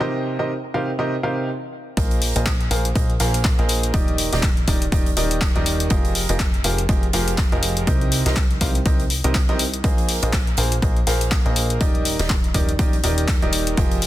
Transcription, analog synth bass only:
1.97 2.33 A#1 loud
2.36 2.69 A#1 medium
2.71 2.93 A#1 loud
2.96 3.18 A#1 loud
3.20 3.56 A#1 medium
3.59 3.92 A#1 loud
4.33 4.66 D#1 loud
4.68 4.90 D#1 loud
4.92 5.15 D#1 loud
5.17 5.53 D#1 loud
5.56 5.88 D#1 medium
5.91 6.26 F1 loud
6.29 6.62 F1 loud
6.64 6.87 F1 loud
6.89 7.11 F1 loud
7.13 7.49 F1 medium
7.52 7.85 F1 loud
7.87 8.23 C2 loud
8.26 8.59 C2 medium
8.61 8.84 C2 loud
8.86 9.22 C2 loud
9.24 9.46 C2 loud
9.49 9.82 C2 medium
9.84 10.20 A#1 medium
10.23 10.56 A#1 medium
10.58 10.80 A#1 medium
10.82 11.05 A#1 loud
11.07 11.43 A#1 medium
11.46 11.79 A#1 medium
11.81 12.17 D#1 medium
12.19 12.52 D#1 loud
12.55 12.77 D#1 loud
12.79 13.02 D#1 loud
13.04 13.40 D#1 loud
13.42 13.75 D#1 medium
13.77 14.07 F1 loud

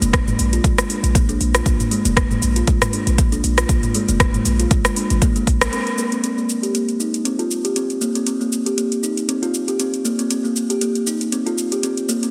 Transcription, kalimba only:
0.02 0.08 A#3 medium
0.27 0.38 G#3 medium
0.53 0.63 F4 medium
0.64 0.77 G#3 medium
0.90 1.03 D4 medium
1.15 1.28 A#3 medium
1.29 1.39 D4 loud
1.55 1.65 F4 medium
1.66 1.79 A#3 medium
1.91 2.04 G#3 loud
2.05 2.12 A#3 medium
2.17 2.29 A#3 medium
2.31 2.41 G#3 medium
2.56 2.66 F4 medium
2.68 2.81 G#3 medium
2.93 3.06 D4 medium
3.18 3.31 A#3 medium
3.32 3.43 D4 loud
3.58 3.68 F4 medium
3.69 3.83 A#3 medium
3.95 4.07 G#3 loud
4.09 4.15 A#3 medium
4.21 4.33 A#3 medium
4.34 4.45 G#3 medium
4.60 4.70 F4 medium
4.71 4.84 G#3 medium
4.96 5.09 D4 medium
5.22 5.35 A#3 loud
5.36 5.47 G#3 medium
5.61 5.72 A#4 medium
5.73 5.86 C4 medium
5.98 6.11 A#3 medium
6.12 6.18 C4 medium
6.23 6.36 C4 medium
6.37 6.48 A#3 medium
6.63 6.73 G4 medium
6.74 6.88 A#3 medium
7.00 7.13 D#4 medium
7.25 7.38 C4 medium
7.39 7.49 F4 medium
7.64 7.75 G4 medium
7.76 7.89 C4 medium
8.01 8.14 A#3 medium
8.15 8.22 C4 medium
8.27 8.39 C4 medium
8.41 8.51 A#3 medium
8.66 8.77 G4 medium
8.77 8.91 A#3 medium
9.03 9.16 D#4 medium
9.29 9.41 C4 medium
9.42 9.53 F4 medium
9.68 9.78 G4 medium
9.80 9.93 C4 medium
10.05 10.18 A#3 medium
10.19 10.25 C4 medium
10.30 10.43 C4 medium
10.44 10.55 A#3 medium
10.70 10.80 G4 medium
10.81 10.95 A#3 medium
11.07 11.20 D#4 medium
11.32 11.45 C4 medium
11.46 11.57 F4 medium
11.72 11.82 G4 medium
11.83 11.96 C4 medium
12.09 12.21 A#3 medium
12.23 12.29 C4 medium

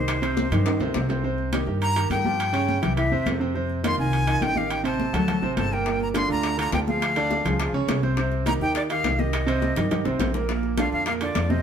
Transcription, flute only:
0.00 1.07 C5 medium
1.82 2.09 A#5 loud
2.11 2.93 G5 loud
2.97 3.38 E5 medium
3.86 3.98 C6 loud
3.99 4.44 G#5 loud
4.43 4.59 G5 loud
4.57 4.73 F5 medium
4.71 4.85 G5 loud
4.86 5.54 A5 medium
5.58 5.75 A5 medium
5.73 6.01 G5 medium
6.02 6.08 A#5 medium
6.17 6.29 C6 medium
6.31 6.57 A#5 loud
6.60 6.73 A#5 medium
6.74 6.80 G5 medium
6.88 7.71 F5 medium
8.47 8.53 A#5 loud
8.62 8.75 G5 loud
8.76 8.82 D5 loud
8.90 9.21 F5 loud
9.19 10.20 D#5 medium
10.78 10.92 F5 medium
10.92 11.06 F5 loud
11.07 11.13 F5 loud
11.22 11.52 D5 medium
11.50 11.62 D#5 medium

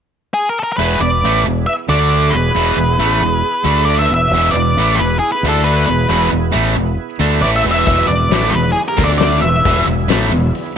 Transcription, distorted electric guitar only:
0.78 0.99 E2 medium
0.78 1.00 B2 medium
0.78 1.01 E3 medium
1.01 1.19 E2 medium
1.01 1.19 B2 medium
1.24 1.45 A2 medium
1.24 1.45 E3 loud
1.24 1.46 A3 medium
1.45 1.63 E2 medium
1.45 1.63 B2 medium
1.89 2.33 D3 medium
1.89 2.33 A3 medium
1.89 2.33 D4 loud
2.33 2.51 E2 medium
2.33 2.51 B2 medium
2.55 2.75 E2 medium
2.55 2.75 B2 medium
2.55 2.77 E3 loud
2.76 2.95 E2 medium
2.76 2.95 B2 medium
2.99 3.21 A2 medium
2.99 3.21 E3 medium
2.99 3.21 A3 medium
3.23 3.40 E2 medium
3.23 3.40 B2 medium
3.64 4.09 D3 medium
3.64 4.09 A3 medium
3.64 4.10 D4 medium
4.11 4.28 E2 medium
4.11 4.28 B2 medium
4.34 4.54 E2 medium
4.34 4.55 B2 medium
4.34 4.55 E3 medium
4.56 4.73 E2 medium
4.56 4.73 B2 medium
4.78 4.99 A2 medium
4.78 4.99 E3 medium
4.78 5.00 A3 medium
4.99 5.17 E2 medium
4.99 5.17 B2 medium
5.44 5.87 D3 medium
5.44 5.88 A3 medium
5.44 5.88 D4 loud
5.88 6.05 E2 medium
5.88 6.06 B2 medium
6.09 6.29 E2 medium
6.09 6.30 B2 medium
6.09 6.31 E3 loud
6.30 6.49 E2 medium
6.30 6.49 B2 medium
6.52 6.74 A2 medium
6.52 6.75 E3 medium
6.52 6.75 A3 medium
6.76 6.94 E2 medium
6.76 6.94 B2 medium
7.20 7.42 D3 medium
7.20 7.42 A3 medium
7.20 7.42 D4 loud
7.42 7.64 A2 medium
7.42 7.64 E3 medium
7.42 7.65 A3 medium
7.65 7.86 E2 medium
7.65 7.87 B2 medium
7.65 7.87 E3 medium
7.87 8.07 E2 medium
7.87 8.08 B2 medium
7.87 8.09 E3 medium
8.08 8.27 E2 medium
8.08 8.27 B2 medium
8.32 8.53 A2 medium
8.32 8.54 E3 loud
8.32 8.54 A3 loud
8.53 8.71 E2 medium
8.53 8.71 B2 medium
8.97 9.41 D3 medium
8.97 9.41 A3 loud
8.97 9.42 D4 medium
9.44 9.61 E2 medium
9.44 9.61 B2 medium
9.66 9.85 E2 medium
9.66 9.86 B2 medium
9.66 9.87 E3 loud
9.86 10.04 E2 medium
9.86 10.05 B2 medium
10.08 10.30 A2 medium
10.08 10.31 E3 medium
10.08 10.31 A3 loud
10.32 10.49 E2 medium
10.32 10.50 B2 medium

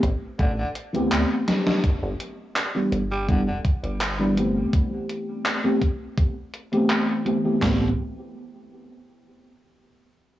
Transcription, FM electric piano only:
0.93 1.81 E3 loud
0.93 1.81 A3 medium
0.93 1.82 B3 medium
0.93 1.82 C4 medium
0.93 1.83 G4 loud
2.74 3.01 E3 medium
2.74 3.01 G3 medium
2.74 3.01 B3 medium
2.74 3.01 D4 medium
2.74 3.01 G4 medium
3.28 3.45 E3 medium
3.28 3.46 G3 medium
3.28 3.46 B3 medium
3.28 3.46 D4 medium
3.28 3.46 G4 medium
4.19 4.34 E3 medium
4.19 4.34 G3 medium
4.19 4.34 B3 medium
4.19 4.34 D4 medium
4.19 4.35 B4 loud
4.36 5.59 E3 medium
4.36 5.59 A3 medium
4.36 5.60 B3 medium
4.36 5.60 C4 medium
4.36 5.61 G4 medium
5.64 5.80 E3 medium
5.64 5.80 A3 medium
5.64 5.80 B3 medium
5.64 5.80 C4 medium
5.64 5.80 G4 medium
6.72 7.22 E3 medium
6.72 7.22 A3 medium
6.72 7.22 B3 medium
6.72 7.22 C4 medium
6.72 7.22 G4 loud
7.25 7.40 E3 loud
7.25 7.40 A3 medium
7.25 7.40 B3 medium
7.25 7.41 C4 medium
7.25 7.41 G4 loud
7.44 7.59 E3 medium
7.44 7.60 A3 medium
7.44 7.61 B3 medium
7.44 7.62 C4 medium
7.44 7.63 G4 medium
7.60 7.88 E3 medium
7.60 7.89 A3 medium
7.60 7.89 B3 medium
7.60 7.90 C4 medium
7.64 7.91 G4 medium

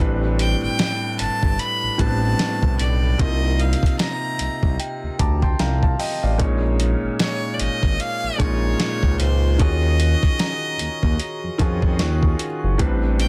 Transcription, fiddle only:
0.40 0.61 G5 loud
0.63 1.16 G5 loud
1.20 1.61 A5 loud
1.60 2.01 B5 loud
2.00 2.79 A5 loud
2.80 3.21 D5 medium
3.19 3.61 D#5 loud
3.60 3.99 F5 medium
3.99 4.75 A#5 medium
7.20 7.55 C#5 loud
7.54 7.61 D5 medium
7.60 8.02 D#5 loud
8.00 8.41 F5 loud
8.40 9.19 C#5 loud
9.20 9.61 C5 medium
9.60 12.00 D#5 loud
13.20 13.28 G5 loud

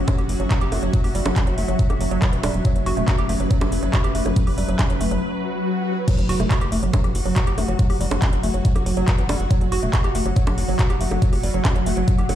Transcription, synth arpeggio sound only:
0.08 0.14 F#3 loud
0.18 0.22 G4 medium
0.40 0.47 F#3 medium
0.51 0.55 F#4 medium
0.61 0.71 G4 loud
0.72 0.76 A3 medium
0.83 0.87 F#3 medium
0.93 1.00 F#3 medium
1.04 1.08 G4 medium
1.15 1.25 G3 medium
1.26 1.32 F#3 medium
1.36 1.43 C#4 medium
1.47 1.57 F#3 medium
1.58 1.62 A3 medium
1.68 1.72 F#3 medium
1.79 1.86 F#3 medium
1.90 1.94 G4 medium
2.01 2.07 F#3 medium
2.11 2.15 F#3 loud
2.22 2.32 E3 medium
2.33 2.39 E3 medium
2.43 2.47 G3 loud
2.65 2.72 F#3 loud
2.76 2.86 F#3 medium
2.86 2.93 F#4 loud
2.97 3.07 A3 medium
3.08 3.12 F#4 loud
3.18 3.28 G4 loud
3.29 3.33 A3 medium
3.40 3.44 F#3 medium
3.51 3.57 F#3 loud
3.61 3.65 G4 medium
3.83 3.89 F#3 medium
3.93 3.97 F#4 loud
4.04 4.14 G4 loud
4.15 4.19 A3 medium
4.26 4.30 F#3 medium
4.36 4.43 F#3 medium
4.47 4.51 G4 medium
4.58 4.68 G3 medium
4.68 4.75 F#3 medium
4.79 4.86 C#4 medium
4.90 5.00 F#3 medium
5.01 5.05 A3 medium
5.11 5.15 F#3 medium
6.08 6.14 F#3 loud
6.18 6.28 F#3 medium
6.29 6.36 F#4 loud
6.40 6.50 A3 medium
6.51 6.55 F#4 loud
6.61 6.71 G4 loud
6.72 6.76 A3 medium
6.83 6.87 F#3 medium
6.93 7.00 F#3 loud
7.04 7.08 G4 medium
7.26 7.32 F#3 medium
7.36 7.40 F#4 loud
7.47 7.57 G4 loud
7.58 7.62 A3 medium
7.68 7.72 F#3 medium
7.79 7.86 F#3 medium
7.90 7.94 G4 medium
8.01 8.11 G3 medium
8.11 8.18 F#3 medium
8.22 8.29 C#4 medium
8.33 8.43 F#3 medium
8.43 8.47 A3 medium
8.54 8.58 F#3 medium
8.65 8.72 F#3 medium
8.76 8.80 G4 medium
8.86 8.93 F#3 medium
8.97 9.01 F#3 loud
9.08 9.17 E3 medium
9.18 9.25 E3 medium
9.29 9.33 G3 loud
9.51 9.57 F#3 loud
9.61 9.71 F#3 medium
9.72 9.79 F#4 loud
9.83 9.93 A3 medium
9.93 9.97 F#4 loud
10.04 10.14 G4 loud
10.15 10.19 A3 medium
10.26 10.30 F#3 medium
10.36 10.43 F#3 loud
10.47 10.51 G4 medium
10.68 10.75 F#3 medium
10.79 10.83 F#4 loud
10.90 11.00 G4 loud
11.01 11.05 A3 medium
11.11 11.15 F#3 medium
11.22 11.29 F#3 medium
11.33 11.37 G4 medium
11.43 11.53 G3 medium
11.54 11.61 F#3 medium
11.65 11.72 C#4 medium
11.76 11.86 F#3 medium
11.86 11.90 A3 medium
11.97 12.01 F#3 medium
12.08 12.14 F#3 medium
12.18 12.22 G4 medium
12.29 12.35 F#3 medium

